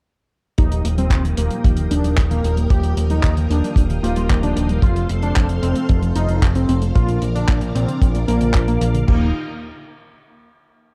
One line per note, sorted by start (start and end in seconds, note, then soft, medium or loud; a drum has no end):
0.58 0.82 D#1 loud
0.58 0.65 D#3 medium
0.58 1.61 F3 medium
0.58 1.61 A#3 medium
0.58 1.61 D#4 medium
0.58 0.83 D#4 medium
0.58 1.61 G4 medium
0.58 4.79 A#4 medium
0.58 9.04 F5 medium
0.58 4.79 G5 medium
0.58 4.79 D#6 medium
0.58 kick loud
0.58 closed hi-hat medium
0.71 0.84 D#3 medium
0.71 closed hi-hat medium
0.85 1.08 D#1 medium
0.85 0.96 A#3 medium
0.85 closed hi-hat loud
0.98 1.05 G3 medium
0.98 1.23 C4 medium
0.98 closed hi-hat medium
1.10 1.34 D#1 medium
1.10 1.18 D#3 medium
1.10 kick medium
1.10 clap loud
1.10 closed hi-hat medium
1.25 1.37 D#3 medium
1.25 closed hi-hat medium
1.37 1.50 D#1 medium
1.37 1.71 A#3 medium
1.37 1.50 A#3 medium
1.37 closed hi-hat loud
1.51 1.58 G3 medium
1.51 closed hi-hat medium
1.64 1.88 D#1 medium
1.64 1.71 D#3 medium
1.64 2.67 F3 medium
1.64 2.67 A#3 medium
1.64 2.67 D#4 medium
1.64 2.67 G4 medium
1.64 kick loud
1.64 closed hi-hat medium
1.77 1.90 D#3 medium
1.77 closed hi-hat soft
1.91 2.03 D#1 loud
1.91 2.03 A#3 medium
1.91 2.16 D4 medium
1.91 closed hi-hat medium
2.04 2.16 D#1 medium
2.04 2.11 G3 medium
2.04 closed hi-hat medium
2.17 2.41 D#1 loud
2.17 2.25 D#3 medium
2.17 kick loud
2.17 clap loud
2.17 closed hi-hat medium
2.31 2.43 D#3 medium
2.31 2.55 A#3 medium
2.31 closed hi-hat medium
2.44 2.68 D#1 loud
2.44 2.56 A#3 medium
2.44 closed hi-hat loud
2.57 2.64 G3 medium
2.57 closed hi-hat medium
2.70 2.94 D#1 loud
2.70 2.78 D#3 medium
2.70 4.00 D#3 medium
2.70 4.00 F3 medium
2.70 4.00 A#3 medium
2.70 4.00 G4 loud
2.70 2.95 G4 loud
2.70 kick loud
2.70 closed hi-hat medium
2.83 2.96 D#3 medium
2.83 closed hi-hat medium
2.97 3.21 D#1 medium
2.97 3.09 A#3 medium
2.97 closed hi-hat medium
3.10 3.17 G3 medium
3.10 3.35 D#4 loud
3.10 closed hi-hat medium
3.23 3.47 D#1 medium
3.23 3.31 D#3 medium
3.23 kick loud
3.23 clap loud
3.23 closed hi-hat medium
3.37 3.49 D#3 medium
3.37 closed hi-hat medium
3.50 3.62 D#1 medium
3.50 3.62 A#3 medium
3.50 3.83 D4 medium
3.50 closed hi-hat medium
3.63 3.71 G3 medium
3.63 closed hi-hat medium
3.76 4.00 D#1 medium
3.76 3.84 D#3 medium
3.76 kick loud
3.76 closed hi-hat medium
3.90 4.03 D#3 medium
3.90 closed hi-hat medium
4.03 4.15 D#1 medium
4.03 4.27 F3 medium
4.03 4.15 A#3 medium
4.03 4.27 A#3 medium
4.03 4.27 D#4 medium
4.03 4.28 F4 medium
4.03 4.27 G4 loud
4.03 closed hi-hat medium
4.16 4.28 D#1 medium
4.16 4.24 G3 medium
4.16 closed hi-hat medium
4.30 4.54 D#1 loud
4.30 4.37 D#3 medium
4.30 4.80 F3 medium
4.30 4.80 A#3 medium
4.30 4.80 D#4 medium
4.30 4.80 G4 loud
4.30 kick medium
4.30 clap loud
4.30 closed hi-hat medium
4.43 4.56 D#3 medium
4.43 4.68 D4 medium
4.43 closed hi-hat medium
4.56 4.80 D#1 loud
4.56 4.68 A#3 medium
4.56 closed hi-hat medium
4.69 4.77 G3 medium
4.69 closed hi-hat soft
4.82 5.06 F1 loud
4.82 5.86 F3 medium
4.82 4.90 F3 medium
4.82 5.86 A3 medium
4.82 5.86 C4 medium
4.82 5.08 F4 loud
4.82 5.86 A4 medium
4.82 6.93 A4 medium
4.82 6.93 C5 medium
4.82 6.93 C6 medium
4.82 kick loud
4.82 closed hi-hat medium
4.96 5.09 F3 medium
4.96 closed hi-hat soft
5.09 5.33 F1 medium
5.09 5.21 C4 medium
5.09 closed hi-hat medium
5.22 5.30 A3 medium
5.22 5.47 D4 loud
5.22 closed hi-hat soft
5.36 5.60 F1 medium
5.36 5.43 F3 medium
5.36 kick loud
5.36 clap loud
5.36 closed hi-hat medium
5.49 5.62 F3 medium
5.49 closed hi-hat soft
5.62 5.74 F1 loud
5.62 5.95 C4 medium
5.62 5.74 C4 medium
5.62 closed hi-hat medium
5.75 5.83 A3 medium
5.75 closed hi-hat medium
5.89 6.13 F1 medium
5.89 6.92 F3 medium
5.89 5.96 F3 medium
5.89 6.92 A3 medium
5.89 6.92 C4 medium
5.89 6.92 A4 medium
5.89 kick loud
5.89 closed hi-hat medium
6.02 6.15 F3 medium
6.02 closed hi-hat medium
6.16 6.28 F1 loud
6.16 6.28 C4 medium
6.16 6.40 D#4 loud
6.16 closed hi-hat medium
6.29 6.41 F1 loud
6.29 6.36 A3 medium
6.29 closed hi-hat medium
6.42 6.66 F1 loud
6.42 6.49 F3 medium
6.42 kick loud
6.42 clap loud
6.42 closed hi-hat medium
6.55 6.68 F3 medium
6.55 6.80 C4 medium
6.55 closed hi-hat medium
6.69 6.93 F1 loud
6.69 6.81 C4 medium
6.69 closed hi-hat medium
6.82 6.89 A3 medium
6.82 closed hi-hat medium
6.95 7.19 A#1 loud
6.95 7.02 A#2 medium
6.95 8.25 F3 medium
6.95 8.25 A#3 medium
6.95 8.25 D4 medium
6.95 7.20 F4 loud
6.95 8.25 A#4 loud
6.95 9.06 A#4 medium
6.95 9.06 D5 medium
6.95 9.06 D6 medium
6.95 kick loud
6.95 closed hi-hat medium
7.08 7.21 A#2 medium
7.08 closed hi-hat medium
7.22 7.46 A#1 medium
7.22 7.34 F3 medium
7.22 closed hi-hat medium
7.35 7.42 D3 medium
7.35 7.60 D4 loud
7.35 closed hi-hat medium
7.48 7.72 A#1 medium
7.48 7.56 A#2 medium
7.48 kick loud
7.48 clap loud
7.48 closed hi-hat medium
7.61 7.74 A#2 medium
7.61 closed hi-hat soft
7.75 7.87 A#1 loud
7.75 7.87 F3 medium
7.75 8.08 C4 medium
7.75 closed hi-hat loud
7.88 7.95 D3 medium
7.88 closed hi-hat soft
8.01 8.25 A#1 medium
8.01 8.09 A#2 medium
8.01 kick loud
8.01 closed hi-hat medium
8.15 8.27 A#2 medium
8.15 closed hi-hat medium
8.28 8.40 A#1 loud
8.28 8.51 F3 loud
8.28 8.40 F3 medium
8.28 8.51 A#3 medium
8.28 8.53 A#3 medium
8.28 8.51 D4 medium
8.28 8.51 A#4 loud
8.28 closed hi-hat medium
8.41 8.53 A#1 loud
8.41 8.48 D3 medium
8.41 closed hi-hat medium
8.54 8.78 A#1 loud
8.54 8.62 A#2 medium
8.54 9.04 F3 medium
8.54 9.04 A#3 medium
8.54 9.04 D4 medium
8.54 9.04 A#4 loud
8.54 kick loud
8.54 clap loud
8.54 closed hi-hat medium
8.68 8.80 A#2 medium
8.68 8.92 A#3 medium
8.68 closed hi-hat medium
8.81 9.05 A#1 loud
8.81 8.93 F3 medium
8.81 closed hi-hat medium
8.94 9.02 D3 medium
8.94 closed hi-hat medium
9.08 9.33 D#1 loud
9.08 9.32 D#3 medium
9.08 9.27 F3 medium
9.08 9.27 A#3 medium
9.08 9.27 D#4 medium
9.08 9.32 D#4 medium
9.08 9.27 G4 medium
9.08 9.32 D#5 medium
9.08 9.32 F5 medium
9.08 9.32 G5 medium
9.08 9.32 A#5 medium
9.08 kick loud
9.08 crash medium